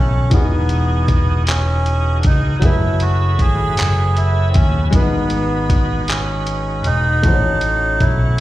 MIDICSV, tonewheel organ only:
0, 0, Header, 1, 2, 480
1, 0, Start_track
1, 0, Tempo, 769231
1, 198, Time_signature, 6, 3, 24, 8
1, 5242, End_track
2, 0, Start_track
2, 0, Title_t, "Tonewheel organ"
2, 0, Program_c, 0, 16
2, 0, Note_on_c, 0, 57, 72
2, 0, Note_on_c, 0, 61, 71
2, 0, Note_on_c, 0, 66, 80
2, 187, Note_on_c, 0, 52, 73
2, 188, Note_off_c, 0, 57, 0
2, 188, Note_off_c, 0, 61, 0
2, 189, Note_on_c, 0, 68, 81
2, 190, Note_on_c, 0, 63, 68
2, 1617, Note_off_c, 0, 66, 0
2, 1618, Note_off_c, 0, 52, 0
2, 1620, Note_off_c, 0, 63, 0
2, 1626, Note_on_c, 0, 71, 79
2, 1628, Note_on_c, 0, 54, 71
2, 1628, Note_on_c, 0, 57, 64
2, 1630, Note_on_c, 0, 64, 66
2, 3049, Note_off_c, 0, 68, 0
2, 3059, Note_off_c, 0, 54, 0
2, 3059, Note_off_c, 0, 57, 0
2, 3060, Note_off_c, 0, 64, 0
2, 3069, Note_on_c, 0, 56, 69
2, 3071, Note_on_c, 0, 66, 66
2, 3072, Note_on_c, 0, 63, 68
2, 4487, Note_off_c, 0, 71, 0
2, 4500, Note_off_c, 0, 56, 0
2, 4501, Note_off_c, 0, 63, 0
2, 4520, Note_on_c, 0, 57, 76
2, 4522, Note_on_c, 0, 61, 71
2, 5242, Note_off_c, 0, 57, 0
2, 5242, Note_off_c, 0, 61, 0
2, 5242, Note_off_c, 0, 66, 0
2, 5242, End_track
0, 0, End_of_file